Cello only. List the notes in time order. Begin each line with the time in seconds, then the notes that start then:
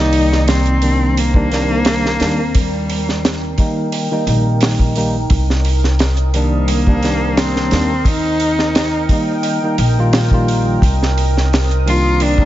Already playing: D#4
0.49 C4
1.19 A#3
2.57 G3
6.34 G3
6.69 A#3
7.38 C4
8.08 D#4
11.88 F4
12.23 D4